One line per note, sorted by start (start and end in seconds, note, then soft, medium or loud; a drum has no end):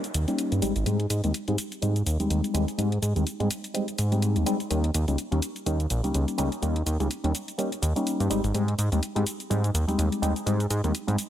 0.00 downlifter medium
0.04 closed hi-hat soft
0.04 cabasa soft
0.14 0.25 D#2 medium
0.14 closed hi-hat medium
0.14 cabasa medium
0.28 0.60 G3 medium
0.28 0.60 A#3 medium
0.28 0.60 C#4 medium
0.28 0.60 D#4 medium
0.28 0.60 G4 medium
0.28 closed hi-hat soft
0.28 cabasa soft
0.38 closed hi-hat medium
0.38 cabasa soft
0.52 0.60 G2 medium
0.52 closed hi-hat soft
0.52 cabasa soft
0.62 0.73 G#1 soft
0.62 0.73 G3 medium
0.62 0.73 G#3 medium
0.62 0.73 C4 medium
0.62 0.73 D#4 medium
0.62 0.73 G4 medium
0.62 closed hi-hat medium
0.62 cabasa medium
0.76 0.84 G#1 medium
0.76 closed hi-hat soft
0.76 cabasa soft
0.86 1.06 G#2 loud
0.86 0.97 G3 medium
0.86 0.97 G#3 medium
0.86 0.97 C4 medium
0.86 0.97 D#4 medium
0.86 0.97 G4 medium
0.86 closed hi-hat medium
0.86 cabasa soft
1.00 closed hi-hat soft
1.10 1.21 G#2 loud
1.10 closed hi-hat medium
1.10 cabasa medium
1.24 1.32 D#2 medium
1.24 1.32 G3 medium
1.24 1.32 G#3 medium
1.24 1.32 C4 medium
1.24 1.32 D#4 medium
1.24 1.32 G4 medium
1.24 closed hi-hat soft
1.24 cabasa soft
1.34 closed hi-hat medium
1.34 cabasa soft
1.48 1.56 G#2 medium
1.48 1.56 G3 medium
1.48 1.56 G#3 medium
1.48 1.56 C4 medium
1.48 1.56 D#4 medium
1.48 1.56 G4 medium
1.48 closed hi-hat soft
1.58 closed hi-hat medium
1.58 cabasa medium
1.72 closed hi-hat soft
1.72 cabasa soft
1.82 2.02 G#2 loud
1.82 1.93 G3 medium
1.82 1.93 G#3 medium
1.82 1.93 C4 medium
1.82 1.93 D#4 medium
1.82 1.93 G4 loud
1.82 closed hi-hat medium
1.82 cabasa soft
1.96 closed hi-hat soft
1.96 cabasa soft
2.06 2.17 D#2 medium
2.06 closed hi-hat medium
2.06 cabasa medium
2.19 2.28 D#2 soft
2.19 2.52 G3 medium
2.19 2.52 G#3 medium
2.19 2.52 C4 medium
2.19 2.52 D#4 medium
2.19 2.52 G4 medium
2.19 closed hi-hat soft
2.19 cabasa soft
2.30 2.41 D#2 medium
2.30 closed hi-hat medium
2.30 cabasa soft
2.44 closed hi-hat soft
2.44 cabasa soft
2.54 2.65 D#2 loud
2.54 2.65 G3 medium
2.54 2.65 G#3 medium
2.54 2.65 C4 medium
2.54 2.65 D#4 medium
2.54 2.65 G4 loud
2.54 closed hi-hat medium
2.54 cabasa medium
2.68 closed hi-hat soft
2.68 cabasa soft
2.78 2.98 G#2 loud
2.78 2.89 G3 medium
2.78 2.89 G#3 medium
2.78 2.89 C4 medium
2.78 2.89 D#4 medium
2.78 2.89 G4 medium
2.78 closed hi-hat medium
2.78 cabasa soft
2.92 closed hi-hat soft
3.02 3.13 G#2 loud
3.02 closed hi-hat medium
3.02 cabasa medium
3.15 3.24 D#2 medium
3.15 3.24 G3 medium
3.15 3.24 G#3 medium
3.15 3.24 C4 medium
3.15 3.24 D#4 medium
3.15 3.24 G4 medium
3.15 closed hi-hat soft
3.15 cabasa soft
3.27 closed hi-hat medium
3.27 cabasa soft
3.40 3.48 G#2 medium
3.40 3.48 G3 medium
3.40 3.48 G#3 medium
3.40 3.48 C4 medium
3.40 3.48 D#4 medium
3.40 3.48 G4 medium
3.40 closed hi-hat soft
3.51 closed hi-hat medium
3.51 cabasa medium
3.64 closed hi-hat soft
3.64 cabasa soft
3.74 3.85 G3 medium
3.74 3.85 G#3 medium
3.74 3.85 C4 medium
3.74 3.85 D#4 medium
3.74 3.85 G4 loud
3.74 closed hi-hat medium
3.74 cabasa soft
3.88 closed hi-hat soft
3.88 cabasa soft
3.98 4.38 G#2 medium
3.98 closed hi-hat medium
3.98 cabasa medium
4.12 4.44 G3 medium
4.12 4.44 G#3 medium
4.12 4.44 C4 medium
4.12 4.44 D#4 medium
4.12 4.44 G4 medium
4.12 closed hi-hat soft
4.12 cabasa soft
4.22 closed hi-hat medium
4.22 cabasa soft
4.36 4.44 D#2 medium
4.36 closed hi-hat soft
4.36 cabasa soft
4.46 4.57 G3 medium
4.46 4.57 G#3 medium
4.46 4.57 C4 medium
4.46 4.57 D#4 medium
4.46 4.57 G4 medium
4.46 closed hi-hat medium
4.46 cabasa medium
4.60 closed hi-hat soft
4.60 cabasa soft
4.70 4.90 D#2 loud
4.70 4.81 G3 medium
4.70 4.81 A#3 medium
4.70 4.81 C#4 medium
4.70 4.81 D#4 medium
4.70 4.81 G4 medium
4.70 closed hi-hat medium
4.70 cabasa soft
4.84 closed hi-hat soft
4.94 5.05 D#2 loud
4.94 closed hi-hat medium
4.94 cabasa medium
5.07 5.16 C#2 medium
5.07 5.16 G3 medium
5.07 5.16 A#3 medium
5.07 5.16 C#4 medium
5.07 5.16 D#4 medium
5.07 5.16 G4 medium
5.07 closed hi-hat soft
5.07 cabasa soft
5.18 closed hi-hat medium
5.18 cabasa soft
5.31 5.40 D#2 medium
5.31 5.40 G3 medium
5.31 5.40 A#3 medium
5.31 5.40 C#4 medium
5.31 5.40 D#4 medium
5.31 5.40 G4 medium
5.31 closed hi-hat soft
5.42 closed hi-hat medium
5.42 cabasa medium
5.56 closed hi-hat soft
5.56 cabasa soft
5.66 5.86 D#2 medium
5.66 5.77 G3 medium
5.66 5.77 A#3 medium
5.66 5.77 C#4 medium
5.66 5.77 D#4 medium
5.66 5.77 G4 loud
5.66 closed hi-hat medium
5.66 cabasa soft
5.80 closed hi-hat soft
5.80 cabasa soft
5.90 6.01 A#1 medium
5.90 closed hi-hat medium
5.90 cabasa medium
6.03 6.12 C#2 soft
6.03 6.36 G3 medium
6.03 6.36 A#3 medium
6.03 6.36 C#4 medium
6.03 6.36 D#4 medium
6.03 6.36 G4 medium
6.03 closed hi-hat soft
6.03 cabasa soft
6.14 6.25 C#2 medium
6.14 closed hi-hat medium
6.14 cabasa soft
6.28 closed hi-hat soft
6.28 cabasa soft
6.38 6.49 C#2 medium
6.38 6.49 G3 medium
6.38 6.49 A#3 medium
6.38 6.49 C#4 medium
6.38 6.49 D#4 medium
6.38 6.49 G4 loud
6.38 closed hi-hat medium
6.38 cabasa medium
6.52 closed hi-hat soft
6.52 cabasa soft
6.62 6.82 D#2 loud
6.62 6.73 G3 medium
6.62 6.73 A#3 medium
6.62 6.73 C#4 medium
6.62 6.73 D#4 medium
6.62 6.73 G4 medium
6.62 closed hi-hat medium
6.62 cabasa soft
6.76 closed hi-hat soft
6.86 6.97 D#2 loud
6.86 closed hi-hat medium
6.86 cabasa medium
7.00 7.08 C#2 medium
7.00 7.08 G3 medium
7.00 7.08 A#3 medium
7.00 7.08 C#4 medium
7.00 7.08 D#4 medium
7.00 7.08 G4 medium
7.00 closed hi-hat soft
7.00 cabasa soft
7.11 closed hi-hat medium
7.11 cabasa soft
7.24 7.32 D#2 medium
7.24 7.32 G3 medium
7.24 7.32 A#3 medium
7.24 7.32 C#4 medium
7.24 7.32 D#4 medium
7.24 7.32 G4 medium
7.24 closed hi-hat soft
7.35 closed hi-hat medium
7.35 cabasa medium
7.48 closed hi-hat soft
7.48 cabasa soft
7.58 7.69 G3 medium
7.58 7.69 A#3 medium
7.58 7.69 C#4 medium
7.58 7.69 D#4 medium
7.58 7.69 G4 loud
7.58 closed hi-hat medium
7.58 cabasa soft
7.72 closed hi-hat soft
7.72 cabasa soft
7.82 7.93 D#2 medium
7.82 closed hi-hat medium
7.82 cabasa medium
7.96 8.28 G3 medium
7.96 8.28 A#3 medium
7.96 8.28 C#4 medium
7.96 8.28 D#4 medium
7.96 8.28 G4 medium
7.96 closed hi-hat soft
7.96 cabasa soft
8.07 closed hi-hat medium
8.07 cabasa soft
8.20 8.28 G2 medium
8.20 closed hi-hat soft
8.20 cabasa soft
8.30 8.41 G#1 soft
8.30 8.41 G3 medium
8.30 8.41 G#3 medium
8.30 8.41 C4 medium
8.30 8.41 D#4 medium
8.30 8.41 G4 loud
8.30 closed hi-hat medium
8.30 cabasa medium
8.44 8.52 G#1 medium
8.44 closed hi-hat soft
8.44 cabasa soft
8.54 8.74 G#2 loud
8.54 8.65 G3 medium
8.54 8.65 G#3 medium
8.54 8.65 C4 medium
8.54 8.65 D#4 medium
8.54 8.65 G4 medium
8.54 closed hi-hat medium
8.54 cabasa soft
8.68 closed hi-hat soft
8.78 8.89 G#2 loud
8.78 closed hi-hat medium
8.78 cabasa medium
8.92 9.00 D#2 medium
8.92 9.00 G3 medium
8.92 9.00 G#3 medium
8.92 9.00 C4 medium
8.92 9.00 D#4 medium
8.92 9.00 G4 medium
8.92 closed hi-hat soft
8.92 cabasa soft
9.03 closed hi-hat medium
9.03 cabasa soft
9.15 9.24 G#2 medium
9.15 9.24 G3 medium
9.15 9.24 G#3 medium
9.15 9.24 C4 medium
9.15 9.24 D#4 medium
9.15 9.24 G4 medium
9.15 closed hi-hat soft
9.27 closed hi-hat medium
9.27 cabasa medium
9.40 closed hi-hat soft
9.40 cabasa soft
9.50 9.70 G#2 loud
9.50 9.61 G3 medium
9.50 9.61 G#3 medium
9.50 9.61 C4 medium
9.50 9.61 D#4 medium
9.50 9.61 G4 loud
9.50 closed hi-hat medium
9.50 cabasa soft
9.64 closed hi-hat soft
9.64 cabasa soft
9.74 9.85 D#2 medium
9.74 closed hi-hat medium
9.74 cabasa medium
9.87 9.96 D#2 soft
9.87 10.20 G3 medium
9.87 10.20 G#3 medium
9.87 10.20 C4 medium
9.87 10.20 D#4 medium
9.87 10.20 G4 medium
9.87 closed hi-hat soft
9.87 cabasa soft
9.98 10.09 D#2 medium
9.98 closed hi-hat medium
9.98 cabasa soft
10.12 closed hi-hat soft
10.12 cabasa soft
10.22 10.33 D#2 medium
10.22 10.33 G3 medium
10.22 10.33 G#3 medium
10.22 10.33 C4 medium
10.22 10.33 D#4 medium
10.22 10.33 G4 loud
10.22 closed hi-hat medium
10.22 cabasa medium
10.36 closed hi-hat soft
10.36 cabasa soft
10.46 10.66 G#2 loud
10.46 10.57 G3 medium
10.46 10.57 G#3 medium
10.46 10.57 C4 medium
10.46 10.57 D#4 medium
10.46 10.57 G4 medium
10.46 closed hi-hat medium
10.46 cabasa soft
10.60 closed hi-hat soft
10.60 cabasa soft
10.70 10.81 G#2 loud
10.70 closed hi-hat medium
10.70 cabasa medium
10.84 10.92 D#2 medium
10.84 10.92 G3 medium
10.84 10.92 G#3 medium
10.84 10.92 C4 medium
10.84 10.92 D#4 medium
10.84 10.92 G4 medium
10.84 closed hi-hat soft
10.84 cabasa soft
10.95 closed hi-hat medium
10.95 cabasa soft
11.07 11.16 G#2 medium
11.07 11.16 G3 medium
11.07 11.16 G#3 medium
11.07 11.16 C4 medium
11.07 11.16 D#4 medium
11.07 11.16 G4 medium
11.07 closed hi-hat soft
11.07 cabasa soft
11.18 closed hi-hat medium
11.18 cabasa medium